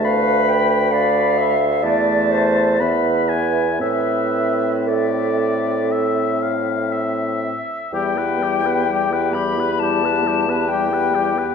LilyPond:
<<
  \new Staff \with { instrumentName = "Flute" } { \time 4/4 \key a \minor \tempo 4 = 63 f''8 g''8 f''4 e''4 e''4 | e''2.~ e''8 r8 | \key e \minor g''4. b''8 a''4 g''4 | }
  \new Staff \with { instrumentName = "Oboe" } { \time 4/4 \key a \minor b''4. r8 a''4 b''8 gis''8 | e''4 d''4 e''8 f''8 e''4 | \key e \minor g'16 b'16 g'16 b'16 g'16 b'16 g'16 b'16 g'16 b'16 g'16 b'16 g'16 b'16 g'16 b'16 | }
  \new Staff \with { instrumentName = "Clarinet" } { \time 4/4 \key a \minor b'4 d''8 e''8 d''8 c''8 b'4 | b'4 a'2 r4 | \key e \minor e'16 g'16 e'16 g'16 e'16 g'16 e'16 g'16 e'16 g'16 e'16 g'16 e'16 g'16 e'16 g'16 | }
  \new Staff \with { instrumentName = "French horn" } { \time 4/4 \key a \minor a4.~ a16 r16 a4 b4 | c'2.~ c'8. r16 | \key e \minor g16 b16 g16 b16 g16 b16 g16 b16 g16 b16 g16 b16 g16 b16 g16 b16 | }
  \new Staff \with { instrumentName = "Bassoon" } { \clef bass \time 4/4 \key a \minor d,2 e,4 e,4 | a,2.~ a,8 r8 | \key e \minor e,1 | }
>>